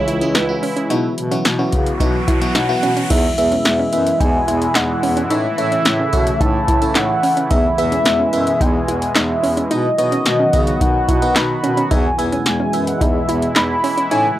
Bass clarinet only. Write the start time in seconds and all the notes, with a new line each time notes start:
0.08 C#2
0.35 C#2
0.90 B2
1.18 B2
1.45 B2
1.73 C#3
2.00 B2
2.28 B2
2.55 B2
2.83 B2
3.10 E2
3.38 E2
3.65 E2
3.93 F#2
4.20 E2
4.48 E2
4.75 E2
5.03 E2
5.31 A2
5.58 A2
5.86 A2
6.13 B2
6.40 A2
6.68 A2
6.96 A2
7.51 E2
7.78 E2
8.06 E2
8.33 F#2
8.61 E2
8.88 E2
9.16 E2
9.43 E2
9.71 B2
9.98 B2
10.26 B2
10.54 C#3
10.81 B2
11.08 B2
11.36 B2
11.64 B2
11.91 E2
12.19 E2
12.46 E2
12.74 F#2
13.01 E2
13.29 E2
13.56 E2
14.11 A2